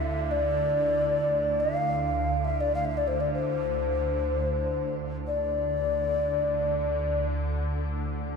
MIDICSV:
0, 0, Header, 1, 4, 480
1, 0, Start_track
1, 0, Key_signature, -1, "minor"
1, 0, Tempo, 500000
1, 8030, End_track
2, 0, Start_track
2, 0, Title_t, "Ocarina"
2, 0, Program_c, 0, 79
2, 0, Note_on_c, 0, 76, 80
2, 300, Note_on_c, 0, 74, 80
2, 314, Note_off_c, 0, 76, 0
2, 1536, Note_on_c, 0, 77, 76
2, 1551, Note_off_c, 0, 74, 0
2, 2347, Note_on_c, 0, 76, 65
2, 2362, Note_off_c, 0, 77, 0
2, 2500, Note_on_c, 0, 74, 64
2, 2515, Note_off_c, 0, 76, 0
2, 2615, Note_off_c, 0, 74, 0
2, 2635, Note_on_c, 0, 77, 70
2, 2734, Note_on_c, 0, 76, 71
2, 2748, Note_off_c, 0, 77, 0
2, 2852, Note_on_c, 0, 74, 62
2, 2867, Note_off_c, 0, 76, 0
2, 2952, Note_on_c, 0, 72, 58
2, 2966, Note_off_c, 0, 74, 0
2, 3074, Note_on_c, 0, 74, 58
2, 3088, Note_off_c, 0, 72, 0
2, 3194, Note_off_c, 0, 74, 0
2, 3203, Note_on_c, 0, 72, 65
2, 4751, Note_off_c, 0, 72, 0
2, 5058, Note_on_c, 0, 74, 66
2, 6966, Note_off_c, 0, 74, 0
2, 8030, End_track
3, 0, Start_track
3, 0, Title_t, "Singing bowl"
3, 0, Program_c, 1, 14
3, 0, Note_on_c, 1, 62, 46
3, 0, Note_on_c, 1, 64, 54
3, 1607, Note_off_c, 1, 64, 0
3, 3988, Note_off_c, 1, 62, 0
3, 8030, End_track
4, 0, Start_track
4, 0, Title_t, "Ambient pad"
4, 0, Program_c, 2, 92
4, 0, Note_on_c, 2, 38, 63
4, 4240, Note_off_c, 2, 38, 0
4, 4252, Note_on_c, 2, 38, 65
4, 8030, Note_off_c, 2, 38, 0
4, 8030, End_track
0, 0, End_of_file